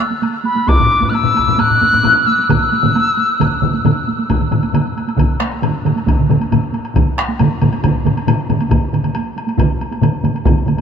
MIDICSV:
0, 0, Header, 1, 4, 480
1, 0, Start_track
1, 0, Tempo, 451128
1, 731, Time_signature, 4, 2, 24, 8
1, 5523, Tempo, 438276
1, 11677, End_track
2, 0, Start_track
2, 0, Title_t, "Piccolo"
2, 0, Program_c, 0, 72
2, 0, Note_on_c, 0, 88, 72
2, 240, Note_off_c, 0, 88, 0
2, 482, Note_on_c, 0, 83, 79
2, 725, Note_on_c, 0, 86, 96
2, 741, Note_off_c, 0, 83, 0
2, 1167, Note_on_c, 0, 90, 65
2, 1183, Note_off_c, 0, 86, 0
2, 1206, Note_on_c, 0, 88, 96
2, 1222, Note_off_c, 0, 90, 0
2, 1700, Note_on_c, 0, 90, 106
2, 1716, Note_off_c, 0, 88, 0
2, 2413, Note_on_c, 0, 88, 86
2, 2429, Note_off_c, 0, 90, 0
2, 2657, Note_off_c, 0, 88, 0
2, 2677, Note_on_c, 0, 88, 101
2, 4062, Note_off_c, 0, 88, 0
2, 11677, End_track
3, 0, Start_track
3, 0, Title_t, "Taiko and cinematic ensemble drums"
3, 112, Note_on_c, 9, 48, 51
3, 218, Note_off_c, 9, 48, 0
3, 235, Note_on_c, 9, 48, 68
3, 341, Note_off_c, 9, 48, 0
3, 469, Note_on_c, 9, 48, 52
3, 575, Note_off_c, 9, 48, 0
3, 587, Note_on_c, 9, 48, 54
3, 693, Note_off_c, 9, 48, 0
3, 711, Note_on_c, 9, 48, 62
3, 724, Note_on_c, 9, 41, 98
3, 817, Note_off_c, 9, 48, 0
3, 830, Note_off_c, 9, 41, 0
3, 851, Note_on_c, 9, 45, 96
3, 957, Note_off_c, 9, 45, 0
3, 1067, Note_on_c, 9, 48, 52
3, 1088, Note_on_c, 9, 45, 91
3, 1174, Note_off_c, 9, 48, 0
3, 1188, Note_on_c, 9, 48, 67
3, 1194, Note_off_c, 9, 45, 0
3, 1294, Note_off_c, 9, 48, 0
3, 1321, Note_on_c, 9, 45, 101
3, 1428, Note_off_c, 9, 45, 0
3, 1434, Note_on_c, 9, 48, 51
3, 1466, Note_on_c, 9, 41, 68
3, 1540, Note_off_c, 9, 48, 0
3, 1572, Note_off_c, 9, 41, 0
3, 1575, Note_on_c, 9, 45, 99
3, 1681, Note_off_c, 9, 45, 0
3, 1681, Note_on_c, 9, 48, 73
3, 1699, Note_on_c, 9, 45, 71
3, 1787, Note_off_c, 9, 48, 0
3, 1805, Note_off_c, 9, 45, 0
3, 1823, Note_on_c, 9, 45, 77
3, 1929, Note_on_c, 9, 48, 58
3, 1930, Note_off_c, 9, 45, 0
3, 1937, Note_on_c, 9, 45, 70
3, 2036, Note_off_c, 9, 48, 0
3, 2044, Note_off_c, 9, 45, 0
3, 2048, Note_on_c, 9, 48, 52
3, 2061, Note_on_c, 9, 45, 72
3, 2154, Note_off_c, 9, 48, 0
3, 2165, Note_on_c, 9, 48, 66
3, 2168, Note_off_c, 9, 45, 0
3, 2178, Note_on_c, 9, 45, 103
3, 2271, Note_off_c, 9, 48, 0
3, 2284, Note_off_c, 9, 45, 0
3, 2414, Note_on_c, 9, 48, 56
3, 2520, Note_off_c, 9, 48, 0
3, 2536, Note_on_c, 9, 48, 59
3, 2643, Note_off_c, 9, 48, 0
3, 2653, Note_on_c, 9, 45, 97
3, 2653, Note_on_c, 9, 47, 99
3, 2659, Note_on_c, 9, 48, 80
3, 2664, Note_on_c, 9, 41, 94
3, 2759, Note_off_c, 9, 45, 0
3, 2759, Note_off_c, 9, 47, 0
3, 2765, Note_off_c, 9, 48, 0
3, 2770, Note_off_c, 9, 41, 0
3, 2901, Note_on_c, 9, 48, 55
3, 3007, Note_off_c, 9, 48, 0
3, 3010, Note_on_c, 9, 47, 100
3, 3014, Note_on_c, 9, 48, 56
3, 3019, Note_on_c, 9, 45, 88
3, 3117, Note_off_c, 9, 47, 0
3, 3121, Note_off_c, 9, 48, 0
3, 3125, Note_off_c, 9, 45, 0
3, 3142, Note_on_c, 9, 48, 70
3, 3249, Note_off_c, 9, 48, 0
3, 3375, Note_on_c, 9, 48, 53
3, 3482, Note_off_c, 9, 48, 0
3, 3617, Note_on_c, 9, 45, 89
3, 3620, Note_on_c, 9, 48, 76
3, 3622, Note_on_c, 9, 41, 73
3, 3624, Note_on_c, 9, 47, 102
3, 3724, Note_off_c, 9, 45, 0
3, 3727, Note_off_c, 9, 48, 0
3, 3729, Note_off_c, 9, 41, 0
3, 3730, Note_off_c, 9, 47, 0
3, 3853, Note_on_c, 9, 47, 94
3, 3855, Note_on_c, 9, 45, 92
3, 3861, Note_on_c, 9, 48, 55
3, 3959, Note_off_c, 9, 47, 0
3, 3961, Note_off_c, 9, 45, 0
3, 3968, Note_off_c, 9, 48, 0
3, 3974, Note_on_c, 9, 48, 53
3, 4080, Note_off_c, 9, 48, 0
3, 4094, Note_on_c, 9, 47, 99
3, 4096, Note_on_c, 9, 45, 92
3, 4097, Note_on_c, 9, 48, 66
3, 4200, Note_off_c, 9, 47, 0
3, 4202, Note_off_c, 9, 45, 0
3, 4204, Note_off_c, 9, 48, 0
3, 4336, Note_on_c, 9, 48, 54
3, 4442, Note_off_c, 9, 48, 0
3, 4449, Note_on_c, 9, 48, 52
3, 4556, Note_off_c, 9, 48, 0
3, 4570, Note_on_c, 9, 47, 58
3, 4572, Note_on_c, 9, 48, 62
3, 4577, Note_on_c, 9, 45, 61
3, 4578, Note_on_c, 9, 41, 86
3, 4676, Note_off_c, 9, 47, 0
3, 4679, Note_off_c, 9, 48, 0
3, 4684, Note_off_c, 9, 41, 0
3, 4684, Note_off_c, 9, 45, 0
3, 4686, Note_on_c, 9, 47, 60
3, 4689, Note_on_c, 9, 45, 56
3, 4792, Note_off_c, 9, 47, 0
3, 4795, Note_off_c, 9, 45, 0
3, 4802, Note_on_c, 9, 47, 85
3, 4807, Note_on_c, 9, 45, 84
3, 4807, Note_on_c, 9, 48, 42
3, 4909, Note_off_c, 9, 47, 0
3, 4913, Note_off_c, 9, 45, 0
3, 4914, Note_off_c, 9, 48, 0
3, 4928, Note_on_c, 9, 48, 50
3, 5033, Note_on_c, 9, 45, 90
3, 5035, Note_off_c, 9, 48, 0
3, 5045, Note_on_c, 9, 47, 84
3, 5045, Note_on_c, 9, 48, 58
3, 5140, Note_off_c, 9, 45, 0
3, 5151, Note_off_c, 9, 47, 0
3, 5152, Note_off_c, 9, 48, 0
3, 5283, Note_on_c, 9, 48, 46
3, 5390, Note_off_c, 9, 48, 0
3, 5400, Note_on_c, 9, 48, 48
3, 5504, Note_on_c, 9, 45, 83
3, 5507, Note_off_c, 9, 48, 0
3, 5508, Note_on_c, 9, 41, 82
3, 5508, Note_on_c, 9, 48, 71
3, 5514, Note_on_c, 9, 47, 94
3, 5613, Note_off_c, 9, 45, 0
3, 5617, Note_off_c, 9, 41, 0
3, 5617, Note_off_c, 9, 48, 0
3, 5624, Note_off_c, 9, 47, 0
3, 5752, Note_on_c, 9, 37, 68
3, 5753, Note_off_c, 9, 37, 0
3, 5753, Note_on_c, 9, 37, 62
3, 5756, Note_on_c, 9, 48, 46
3, 5863, Note_off_c, 9, 37, 0
3, 5865, Note_off_c, 9, 48, 0
3, 5886, Note_on_c, 9, 48, 44
3, 5995, Note_off_c, 9, 48, 0
3, 5996, Note_on_c, 9, 47, 92
3, 6000, Note_on_c, 9, 45, 83
3, 6006, Note_on_c, 9, 48, 65
3, 6106, Note_off_c, 9, 47, 0
3, 6109, Note_off_c, 9, 45, 0
3, 6115, Note_off_c, 9, 48, 0
3, 6246, Note_on_c, 9, 47, 85
3, 6249, Note_on_c, 9, 45, 80
3, 6260, Note_on_c, 9, 48, 47
3, 6355, Note_off_c, 9, 47, 0
3, 6359, Note_off_c, 9, 45, 0
3, 6366, Note_off_c, 9, 48, 0
3, 6366, Note_on_c, 9, 48, 50
3, 6476, Note_off_c, 9, 48, 0
3, 6483, Note_on_c, 9, 47, 64
3, 6484, Note_on_c, 9, 48, 66
3, 6487, Note_on_c, 9, 41, 89
3, 6494, Note_on_c, 9, 45, 68
3, 6593, Note_off_c, 9, 47, 0
3, 6594, Note_off_c, 9, 48, 0
3, 6596, Note_off_c, 9, 41, 0
3, 6604, Note_off_c, 9, 45, 0
3, 6615, Note_on_c, 9, 47, 60
3, 6620, Note_on_c, 9, 45, 62
3, 6724, Note_on_c, 9, 48, 47
3, 6725, Note_off_c, 9, 47, 0
3, 6729, Note_off_c, 9, 45, 0
3, 6734, Note_on_c, 9, 45, 90
3, 6739, Note_on_c, 9, 47, 90
3, 6833, Note_off_c, 9, 48, 0
3, 6843, Note_off_c, 9, 45, 0
3, 6846, Note_on_c, 9, 48, 52
3, 6849, Note_off_c, 9, 47, 0
3, 6956, Note_off_c, 9, 48, 0
3, 6978, Note_on_c, 9, 48, 62
3, 6984, Note_on_c, 9, 45, 96
3, 6988, Note_on_c, 9, 47, 84
3, 7088, Note_off_c, 9, 48, 0
3, 7093, Note_off_c, 9, 45, 0
3, 7097, Note_off_c, 9, 47, 0
3, 7211, Note_on_c, 9, 48, 50
3, 7320, Note_off_c, 9, 48, 0
3, 7459, Note_on_c, 9, 41, 86
3, 7459, Note_on_c, 9, 48, 69
3, 7460, Note_on_c, 9, 45, 82
3, 7460, Note_on_c, 9, 47, 93
3, 7568, Note_off_c, 9, 41, 0
3, 7569, Note_off_c, 9, 48, 0
3, 7570, Note_off_c, 9, 45, 0
3, 7570, Note_off_c, 9, 47, 0
3, 7703, Note_on_c, 9, 37, 68
3, 7713, Note_off_c, 9, 37, 0
3, 7713, Note_on_c, 9, 37, 66
3, 7815, Note_on_c, 9, 48, 46
3, 7822, Note_off_c, 9, 37, 0
3, 7925, Note_off_c, 9, 48, 0
3, 7935, Note_on_c, 9, 48, 62
3, 7944, Note_on_c, 9, 45, 88
3, 7949, Note_on_c, 9, 47, 95
3, 8045, Note_off_c, 9, 48, 0
3, 8053, Note_off_c, 9, 45, 0
3, 8059, Note_off_c, 9, 47, 0
3, 8179, Note_on_c, 9, 48, 47
3, 8183, Note_on_c, 9, 45, 89
3, 8184, Note_on_c, 9, 47, 81
3, 8288, Note_off_c, 9, 48, 0
3, 8292, Note_off_c, 9, 45, 0
3, 8293, Note_off_c, 9, 47, 0
3, 8304, Note_on_c, 9, 48, 51
3, 8413, Note_off_c, 9, 48, 0
3, 8413, Note_on_c, 9, 48, 60
3, 8421, Note_on_c, 9, 47, 86
3, 8425, Note_on_c, 9, 41, 85
3, 8428, Note_on_c, 9, 45, 91
3, 8523, Note_off_c, 9, 48, 0
3, 8531, Note_off_c, 9, 47, 0
3, 8535, Note_off_c, 9, 41, 0
3, 8537, Note_off_c, 9, 45, 0
3, 8655, Note_on_c, 9, 48, 49
3, 8664, Note_on_c, 9, 45, 85
3, 8669, Note_on_c, 9, 47, 95
3, 8765, Note_off_c, 9, 48, 0
3, 8773, Note_off_c, 9, 45, 0
3, 8776, Note_on_c, 9, 48, 50
3, 8778, Note_off_c, 9, 47, 0
3, 8886, Note_off_c, 9, 48, 0
3, 8897, Note_on_c, 9, 45, 98
3, 8906, Note_on_c, 9, 47, 87
3, 8906, Note_on_c, 9, 48, 63
3, 9006, Note_off_c, 9, 45, 0
3, 9015, Note_off_c, 9, 47, 0
3, 9015, Note_off_c, 9, 48, 0
3, 9136, Note_on_c, 9, 48, 48
3, 9142, Note_on_c, 9, 45, 81
3, 9148, Note_on_c, 9, 47, 91
3, 9245, Note_off_c, 9, 48, 0
3, 9251, Note_off_c, 9, 45, 0
3, 9258, Note_off_c, 9, 47, 0
3, 9266, Note_on_c, 9, 48, 52
3, 9373, Note_on_c, 9, 45, 94
3, 9375, Note_off_c, 9, 48, 0
3, 9376, Note_on_c, 9, 41, 95
3, 9378, Note_on_c, 9, 47, 102
3, 9384, Note_on_c, 9, 48, 66
3, 9483, Note_off_c, 9, 45, 0
3, 9486, Note_off_c, 9, 41, 0
3, 9487, Note_off_c, 9, 47, 0
3, 9493, Note_off_c, 9, 48, 0
3, 9616, Note_on_c, 9, 45, 64
3, 9616, Note_on_c, 9, 47, 64
3, 9617, Note_on_c, 9, 48, 51
3, 9726, Note_off_c, 9, 45, 0
3, 9726, Note_off_c, 9, 47, 0
3, 9726, Note_off_c, 9, 48, 0
3, 9730, Note_on_c, 9, 45, 66
3, 9741, Note_on_c, 9, 48, 50
3, 9747, Note_on_c, 9, 47, 59
3, 9840, Note_off_c, 9, 45, 0
3, 9851, Note_off_c, 9, 48, 0
3, 9854, Note_on_c, 9, 48, 66
3, 9856, Note_off_c, 9, 47, 0
3, 9963, Note_off_c, 9, 48, 0
3, 10099, Note_on_c, 9, 48, 50
3, 10206, Note_off_c, 9, 48, 0
3, 10206, Note_on_c, 9, 48, 53
3, 10316, Note_off_c, 9, 48, 0
3, 10328, Note_on_c, 9, 45, 101
3, 10333, Note_on_c, 9, 41, 96
3, 10334, Note_on_c, 9, 48, 74
3, 10340, Note_on_c, 9, 47, 86
3, 10437, Note_off_c, 9, 45, 0
3, 10443, Note_off_c, 9, 41, 0
3, 10443, Note_off_c, 9, 48, 0
3, 10450, Note_off_c, 9, 47, 0
3, 10583, Note_on_c, 9, 48, 49
3, 10692, Note_off_c, 9, 48, 0
3, 10695, Note_on_c, 9, 48, 57
3, 10805, Note_off_c, 9, 48, 0
3, 10808, Note_on_c, 9, 45, 95
3, 10814, Note_on_c, 9, 48, 59
3, 10819, Note_on_c, 9, 47, 96
3, 10918, Note_off_c, 9, 45, 0
3, 10923, Note_off_c, 9, 48, 0
3, 10928, Note_off_c, 9, 47, 0
3, 11048, Note_on_c, 9, 45, 81
3, 11049, Note_on_c, 9, 48, 51
3, 11052, Note_on_c, 9, 47, 87
3, 11158, Note_off_c, 9, 45, 0
3, 11158, Note_off_c, 9, 48, 0
3, 11162, Note_off_c, 9, 47, 0
3, 11173, Note_on_c, 9, 48, 47
3, 11282, Note_off_c, 9, 48, 0
3, 11287, Note_on_c, 9, 48, 69
3, 11288, Note_on_c, 9, 41, 97
3, 11288, Note_on_c, 9, 47, 104
3, 11291, Note_on_c, 9, 45, 94
3, 11396, Note_off_c, 9, 48, 0
3, 11398, Note_off_c, 9, 41, 0
3, 11398, Note_off_c, 9, 47, 0
3, 11400, Note_off_c, 9, 45, 0
3, 11515, Note_on_c, 9, 47, 67
3, 11532, Note_on_c, 9, 48, 48
3, 11535, Note_on_c, 9, 45, 66
3, 11625, Note_off_c, 9, 47, 0
3, 11638, Note_on_c, 9, 47, 66
3, 11642, Note_off_c, 9, 48, 0
3, 11645, Note_off_c, 9, 45, 0
3, 11677, Note_off_c, 9, 47, 0
3, 11677, End_track
4, 0, Start_track
4, 0, Title_t, "Drums"
4, 245, Note_on_c, 9, 76, 42
4, 352, Note_off_c, 9, 76, 0
4, 731, Note_on_c, 9, 76, 53
4, 837, Note_off_c, 9, 76, 0
4, 1220, Note_on_c, 9, 76, 44
4, 1326, Note_off_c, 9, 76, 0
4, 1456, Note_on_c, 9, 76, 43
4, 1563, Note_off_c, 9, 76, 0
4, 1692, Note_on_c, 9, 76, 52
4, 1798, Note_off_c, 9, 76, 0
4, 2174, Note_on_c, 9, 76, 43
4, 2281, Note_off_c, 9, 76, 0
4, 2663, Note_on_c, 9, 76, 56
4, 2769, Note_off_c, 9, 76, 0
4, 3144, Note_on_c, 9, 76, 43
4, 3250, Note_off_c, 9, 76, 0
4, 3630, Note_on_c, 9, 76, 51
4, 3736, Note_off_c, 9, 76, 0
4, 4102, Note_on_c, 9, 76, 40
4, 4209, Note_off_c, 9, 76, 0
4, 4573, Note_on_c, 9, 76, 47
4, 4679, Note_off_c, 9, 76, 0
4, 4809, Note_on_c, 9, 76, 33
4, 4915, Note_off_c, 9, 76, 0
4, 4925, Note_on_c, 9, 76, 36
4, 5032, Note_off_c, 9, 76, 0
4, 5050, Note_on_c, 9, 76, 50
4, 5156, Note_off_c, 9, 76, 0
4, 5295, Note_on_c, 9, 76, 37
4, 5402, Note_off_c, 9, 76, 0
4, 5411, Note_on_c, 9, 76, 33
4, 5517, Note_off_c, 9, 76, 0
4, 5527, Note_on_c, 9, 76, 45
4, 5637, Note_off_c, 9, 76, 0
4, 5761, Note_on_c, 9, 76, 36
4, 5870, Note_off_c, 9, 76, 0
4, 5879, Note_on_c, 9, 76, 37
4, 5989, Note_off_c, 9, 76, 0
4, 6006, Note_on_c, 9, 76, 49
4, 6115, Note_off_c, 9, 76, 0
4, 6258, Note_on_c, 9, 76, 40
4, 6368, Note_off_c, 9, 76, 0
4, 6387, Note_on_c, 9, 76, 34
4, 6497, Note_off_c, 9, 76, 0
4, 6503, Note_on_c, 9, 76, 45
4, 6612, Note_off_c, 9, 76, 0
4, 6746, Note_on_c, 9, 76, 38
4, 6855, Note_off_c, 9, 76, 0
4, 6863, Note_on_c, 9, 76, 39
4, 6973, Note_off_c, 9, 76, 0
4, 6982, Note_on_c, 9, 76, 49
4, 7092, Note_off_c, 9, 76, 0
4, 7221, Note_on_c, 9, 76, 38
4, 7331, Note_off_c, 9, 76, 0
4, 7339, Note_on_c, 9, 76, 37
4, 7449, Note_off_c, 9, 76, 0
4, 7461, Note_on_c, 9, 76, 50
4, 7570, Note_off_c, 9, 76, 0
4, 7699, Note_on_c, 9, 76, 42
4, 7809, Note_off_c, 9, 76, 0
4, 7937, Note_on_c, 9, 76, 53
4, 8046, Note_off_c, 9, 76, 0
4, 8179, Note_on_c, 9, 76, 45
4, 8288, Note_off_c, 9, 76, 0
4, 8301, Note_on_c, 9, 76, 43
4, 8411, Note_off_c, 9, 76, 0
4, 8422, Note_on_c, 9, 76, 54
4, 8532, Note_off_c, 9, 76, 0
4, 8672, Note_on_c, 9, 76, 43
4, 8782, Note_off_c, 9, 76, 0
4, 8791, Note_on_c, 9, 76, 42
4, 8901, Note_off_c, 9, 76, 0
4, 8908, Note_on_c, 9, 76, 60
4, 9017, Note_off_c, 9, 76, 0
4, 9146, Note_on_c, 9, 76, 46
4, 9255, Note_off_c, 9, 76, 0
4, 9263, Note_on_c, 9, 76, 44
4, 9372, Note_off_c, 9, 76, 0
4, 9381, Note_on_c, 9, 76, 51
4, 9490, Note_off_c, 9, 76, 0
4, 9630, Note_on_c, 9, 76, 40
4, 9740, Note_off_c, 9, 76, 0
4, 9742, Note_on_c, 9, 76, 44
4, 9851, Note_off_c, 9, 76, 0
4, 9857, Note_on_c, 9, 76, 57
4, 9966, Note_off_c, 9, 76, 0
4, 10109, Note_on_c, 9, 76, 45
4, 10219, Note_off_c, 9, 76, 0
4, 10230, Note_on_c, 9, 76, 43
4, 10340, Note_off_c, 9, 76, 0
4, 10348, Note_on_c, 9, 76, 53
4, 10457, Note_off_c, 9, 76, 0
4, 10585, Note_on_c, 9, 76, 41
4, 10695, Note_off_c, 9, 76, 0
4, 10708, Note_on_c, 9, 76, 41
4, 10817, Note_off_c, 9, 76, 0
4, 10827, Note_on_c, 9, 76, 54
4, 10936, Note_off_c, 9, 76, 0
4, 11061, Note_on_c, 9, 76, 41
4, 11171, Note_off_c, 9, 76, 0
4, 11183, Note_on_c, 9, 76, 38
4, 11293, Note_off_c, 9, 76, 0
4, 11302, Note_on_c, 9, 76, 50
4, 11411, Note_off_c, 9, 76, 0
4, 11535, Note_on_c, 9, 76, 37
4, 11644, Note_off_c, 9, 76, 0
4, 11677, End_track
0, 0, End_of_file